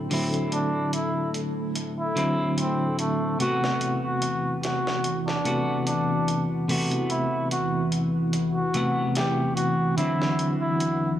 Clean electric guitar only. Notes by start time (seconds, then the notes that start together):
0.10 D3 F#3 C4 E4
2.16 D3 F#3 C4 E4
3.39 C3 A3 B3 F#4
5.45 C3 A3 B3 F#4
6.68 C3 A3 B3 F#4
8.74 C3 A3 B3 F#5
9.97 D3 F#3 C4 E4